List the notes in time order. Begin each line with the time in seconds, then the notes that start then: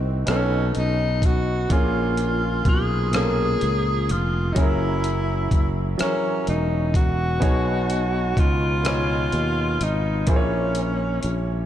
Already playing: C2 C3 C4 D#4 F#4 A#4
0.26 B1 B2 B3 C#4 D#4 A4, cross-stick, closed hi-hat
0.75 B1 D#4, closed hi-hat
1.22 F#4, kick, closed hi-hat
1.69 A#1 A#2 A#3 C#4 F4 G#4, kick, closed hi-hat
2.17 closed hi-hat
2.65 B1 G#4, kick, closed hi-hat
3.11 A#2 A#3 C#4 F4 A4, cross-stick, closed hi-hat
3.16 G#4
3.22 A#4
3.61 C#2, closed hi-hat
4.09 F1 F4, closed hi-hat
4.52 F#3 C#4 D#4, kick, closed hi-hat
4.57 F#1 E4 G#4 A#4
5.04 closed hi-hat
5.51 F#1, kick, closed hi-hat
5.98 E3 F#3 C#4 G#4 A#4, muted fretless electric bass stroke, cross-stick, closed hi-hat
6.02 C#4
6.47 E1 D#4, closed hi-hat
6.94 F#4, kick, closed hi-hat
7.40 B1 B2 B3 D#4 G#4 C#5, kick, closed hi-hat
7.90 closed hi-hat
8.37 C#2 F4, kick, closed hi-hat
8.83 B2 B3 D#4 G#4 C#5, cross-stick, closed hi-hat
9.32 D#2, closed hi-hat
9.81 G#1 D#4, closed hi-hat
10.26 A#1 A#2 A#3 E4 G#4 C5, kick, closed hi-hat
10.30 C#4
10.36 C#5
10.75 closed hi-hat
11.23 A#1, closed hi-hat